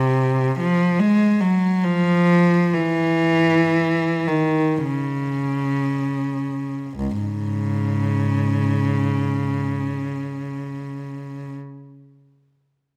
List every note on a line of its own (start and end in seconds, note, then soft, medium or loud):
0.00 0.56 C3 medium
0.60 0.98 F3 medium
1.00 1.40 G#3 medium
1.41 1.84 F#3 medium
1.84 2.75 F3 medium
2.74 4.29 E3 medium
4.27 4.84 D#3 medium
4.85 6.94 C#3 medium
6.98 7.21 C#2 soft
7.21 9.66 G#2 soft
7.21 11.53 C#3 soft